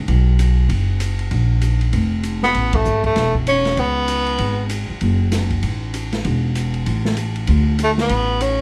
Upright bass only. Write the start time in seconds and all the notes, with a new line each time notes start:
0.08 B1
0.69 F#1
1.31 A#1
1.93 F1
2.55 A1
2.86 G#1
3.17 E1
3.77 C#2
4.39 G#1
4.90 muted upright bass stroke
5.01 F#1
5.63 A1
6.25 E1
6.87 A1
7.48 D2
8.10 A1